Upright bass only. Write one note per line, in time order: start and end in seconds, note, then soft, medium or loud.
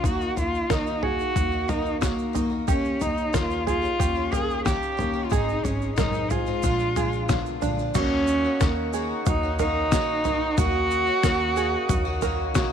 0.04 0.29 D#2 medium
0.37 0.62 D#2 medium
0.70 1.20 D#2 medium
1.36 2.11 D#2 medium
2.35 2.60 D#2 medium
2.68 2.93 D#2 medium
3.02 3.26 D#2 medium
3.34 3.84 D#2 medium
4.00 4.75 D#2 medium
4.99 5.24 D#2 medium
5.32 5.57 G#1 loud
5.65 5.90 G#1 medium
5.98 6.48 A1 medium
6.64 7.39 A#1 medium
7.63 7.87 A#1 medium
7.96 8.45 D#2 medium
8.61 9.11 D#2 medium
9.27 9.92 D#2 medium
9.92 10.42 A#1 medium
10.58 11.08 D#2 loud
11.24 11.74 D#2 medium
11.90 12.56 D#2 loud
12.56 12.72 B1 loud